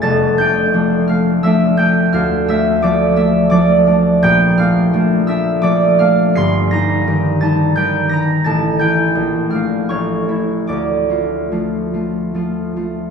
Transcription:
X:1
M:3/4
L:1/8
Q:1/4=85
K:Dm
V:1 name="Harp"
[daa'] [gg']2 [ff'] [ee'] [gg'] | [ff'] [ee'] [dd'] [ee'] [dd']2 | [gg'] [ff']2 [ee'] [dd'] [ff'] | [c'c''] [bb']2 [aa'] [gg'] [bb'] |
[aa'] [gg']2 [ff'] [^c^c']2 | [dd']6 |]
V:2 name="Harp"
[F,,,F,,A,] [A,D] [F,A,D] [A,D] [F,A,D] [A,D] | D,, [A,D] [F,A,D] [A,D] [F,A,D] [A,D] | [B,,,B,,] [A,D] [F,A,D] [A,D] [F,A,D] [A,D] | [G,,,G,,] [G,_E] [_E,G,E] [G,E] [E,G,E] [G,E] |
A,,, [E,E] B,,, [A,D] A,,, [A,E] | D,, [A,F] [F,A,F] [A,F] [F,A,F] [A,F] |]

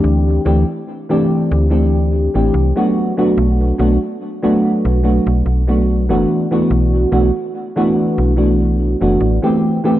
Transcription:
X:1
M:4/4
L:1/16
Q:"Swing 16ths" 1/4=72
K:Em
V:1 name="FM electric piano"
[E,A,CDG]2 [E,A,CDG] z2 [E,A,CDG]3 [E,A,CDG]3 [E,A,CDG]2 [F,A,B,DF]2 [F,A,B,DF]- | [F,A,B,DF]2 [F,A,B,DF] z2 [F,A,B,DF]3 [F,A,B,DF]3 [F,A,B,DF]2 [E,A,B,DF]2 [E,A,B,DF]- | [E,A,B,DF]2 [E,A,B,DF] z2 [E,A,B,DF]3 [E,A,B,DF]3 [E,A,B,DF]2 [E,A,B,CG]2 [E,A,B,CG] |]
V:2 name="FM bass" clef=bass
D,,2 D,, z4 D,,4 A,,, C,, z3 | B,,,2 B,,, z4 B,,,2 B,,, B,,,3 F,,, z2 | B,,,2 B,,, z4 B,,,4 F,,, A,,, z3 |]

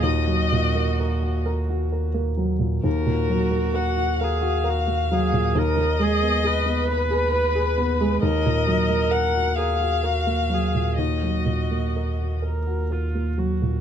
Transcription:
X:1
M:6/8
L:1/16
Q:3/8=44
K:Ebm
V:1 name="Violin"
e6 z6 | B4 g2 f6 | e6 c6 | e4 g2 f6 |
e6 z6 |]
V:2 name="Viola"
G8- G z3 | G6 A2 G2 A2 | B2 A2 c8 | B6 A2 G2 A2 |
G6 B2 F2 G2 |]
V:3 name="Grand piano"
[E,,B,,] G, B,, B, B G B G B B, G, B,, | E,, B,, G, B, B G B G B B, G, B,, | E,, E, A, C A C c A c A C A, | E,, B,, G, B, B G B G B B, G, B,, |
E,, G, B,, B, B G B G B B, G, B,, |]
V:4 name="Sub bass" clef=bass
E,,12 | E,,12- | E,,12 | E,,12- |
E,,12 |]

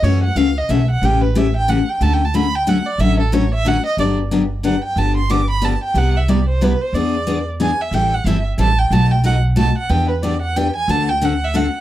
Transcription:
X:1
M:3/4
L:1/16
Q:"Swing" 1/4=182
K:D
V:1 name="Violin"
c2 f2 =f2 _e2 =e2 ^f2 | g2 B2 e2 g2 f2 g2 | (3a2 g2 a2 b2 g2 f2 d2 | e2 A2 c2 e2 f2 _e2 |
[K:G] d2 z6 f2 g2 | a2 c'2 d'2 b2 a2 g2 | f2 e2 d2 c2 B2 c2 | d6 z2 ^g2 e2 |
g2 f2 e2 z2 a2 g2 | a2 g2 f2 z2 a2 f2 | g2 B2 d2 f2 g2 _a2 | a2 g2 f2 e2 f3 z |]
V:2 name="Steel-string acoustic guitar"
[C,E,A,CF]2 z2 [C,E,A,CF]2 z2 [C,E,A,CF]2 z2 | [C,E,A,CG]2 z2 [C,E,A,CG]2 z2 [C,E,A,CG]2 z2 | [D,F,A,CF]2 z2 [D,F,A,CF]2 z2 [D,F,A,CF]2 z2 | [D,F,A,CF]2 z2 [D,F,A,CF]2 z2 [D,F,A,CF]2 z2 |
[K:G] [D,F,B,DG]2 z2 [D,F,B,DG]2 z2 [D,F,B,DG]2 z2 | [D,=F,B,DG]2 z2 [D,F,B,DG]2 z2 [D,F,B,DG]2 z2 | [C,G,B,EG]2 z2 [C,G,B,EG]2 z2 [C,G,B,EG]2 z2 | [E,B,D^G]2 z2 [E,B,DG]2 z2 [E,B,DG]2 z2 |
[E,G,CEA]2 z2 [E,G,CEA]2 z2 [E,G,CEA]2 z2 | [B,,F,A,^DF]2 z2 [B,,F,A,DF]2 z2 [B,,F,A,DF]2 z2 | [E,B,DG]2 z2 [E,B,DG]2 z2 [E,B,DG]2 z2 | [D,A,CFA]2 z2 [D,A,CFA]2 z2 [D,A,CFA]2 z2 |]
V:3 name="Upright bass" clef=bass
F,,4 C,,4 B,,,4 | A,,,12 | D,,12 | A,,,12 |
[K:G] G,,,12 | G,,,12 | C,,12 | E,,12 |
A,,,4 G,,,4 A,,,4 | B,,,12 | E,,12 | D,,12 |]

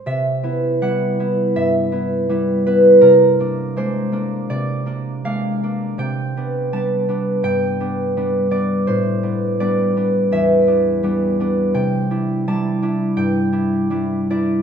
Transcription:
X:1
M:4/4
L:1/8
Q:1/4=82
K:Clyd
V:1 name="Harp"
[ce]2 f2 e3 B | _B2 c2 d2 =f2 | g2 a2 g3 d | c2 d2 e4 |
[K:C] g2 a2 g3 d |]
V:2 name="Harp"
[C,G,C] [B,E] [G,B,E] [B,E] G,, [B,E] [G,B,E] [B,E] | C, [_B,D] [_A,B,D] [B,D] C, [B,D] [A,B,D] [B,D] | C, [B,D] [G,B,D] [B,D] G,, [B,D] [G,B,D] [B,D] | A,, [B,D] [G,B,D] [B,D] E,, [B,D] [G,B,D] [B,D] |
[K:C] C, [DE] [G,DE] [DE] G,, [DE] [G,DE] [DE] |]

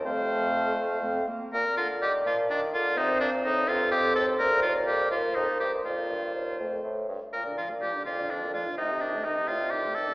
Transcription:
X:1
M:6/8
L:1/16
Q:3/8=83
K:Bb
V:1 name="Flute"
f8- f2 z2 | d12- | d6 c6- | c6 c6 |
d6 c4 z2 | d12 | e12 |]
V:2 name="Clarinet"
C6 A,2 C2 B,2 | d12 | c6 A6 | d6 c6 |
c8- c z3 | d6 d6 | e6 d6 |]
V:3 name="Oboe"
c8- c2 z2 | B2 F2 G2 F2 D2 F2 | E2 D2 E2 F2 G2 A2 | B2 F2 G2 F2 E2 G2 |
F6 z6 | B2 F2 G2 F2 D2 F2 | E2 D2 E2 F2 G2 A2 |]
V:4 name="French horn" clef=bass
A,8- A,2 z2 | B,6 B,6 | C6 C6 | B,12 |
B,6 A,4 z2 | B,, D, F, B, F, D, B,, D, F, B, F, D, | A,, C, E, A, E, C, A,, C, E, A, E, C, |]
V:5 name="Bassoon" clef=bass
F,,8- F,,2 z2 | B,,2 D,2 E,2 F,2 E,2 D,2 | C,2 B,,2 A,,2 G,,2 F,,2 E,,2 | D,,2 E,,2 F,,2 E,,2 F,,2 G,,2 |
F,,2 G,,2 E,,2 F,,2 A,,2 G,,2 | B,,6 F,,6 | C,6 C,6 |]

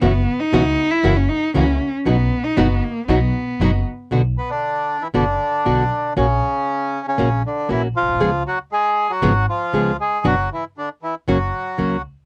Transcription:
X:1
M:4/4
L:1/16
Q:1/4=117
K:B
V:1 name="String section"
[B,EF]2 z2 [B,EF]2 z2 [A,EF]2 z2 [A,EF]2 z2 | [B,DF]2 z2 [B,DF]2 z2 [B,DF]2 z2 [B,DF]2 z2 | [K:Bm] z16 | z16 |
z16 | z16 |]
V:2 name="Cello"
B,3 D4 E2 C D2 C3 z | B,3 D B,2 A,2 B,6 z2 | [K:Bm] z16 | z16 |
z16 | z16 |]
V:3 name="Bandoneon"
z16 | z16 | [K:Bm] z2 [B,B] [D,D]4 [E,E] [D,D]8 | [C,C]6- [C,C] [C,C]3 [D,D]2 [E,E]2 [^E,^E]2- |
[^E,^E]2 [F,F]2 [^G,^G]3 [F,F]3 [E,E]4 [G,G]2 | [F,F]2 [E,E]2 [D,D]2 [E,E]2 [F,F]6 z2 |]
V:4 name="Nylon-string guitar"
[B,,E,B,CF]2 z2 [B,,E,B,CF]2 z2 [C,E,A,CF]2 z2 [C,E,A,CF]2 z2 | [B,,F,B,DF]2 z2 [B,,F,B,DF]2 z2 [B,,F,B,DF]2 z2 [B,,F,B,DF]2 z2 | [K:Bm] [B,,D,B,DF]2 z6 [B,,D,B,DF]2 z2 [B,,D,B,DF]2 z2 | [^A,CF]2 z6 [A,CF]2 z2 [A,CF]2 z2 |
[C,^E,^G,B,^G]2 z6 [C,E,G,B,G]2 z2 [C,E,G,B,G]2 z2 | [B,,F,B,DF]2 z6 [C,F,^A,CF]2 z2 [C,F,A,CF]2 z2 |]
V:5 name="Upright bass" clef=bass
F,,,3/2 z2 z/2 C,,3/2 z2 z/2 F,,,3/2 z2 z/2 C,,3/2 z2 z/2 | B,,,3/2 z2 z/2 F,,,3/2 z2 z/2 B,,,3/2 z2 z/2 F,,,3/2 z2 z/2 | [K:Bm] B,,,3/2 z6 z/2 F,,,3/2 z2 z/2 B,,,3/2 z2 z/2 | ^A,,,3/2 z6 z/2 A,,,3/2 z2 z/2 A,,,3/2 z A,,,/2 B,,,/2 =C,,/2 |
C,,3/2 z6 z/2 ^G,,,3/2 z2 z/2 C,,3/2 z2 z/2 | F,,,3/2 z6 z/2 F,,,3/2 z2 z/2 C,,3/2 z2 z/2 |]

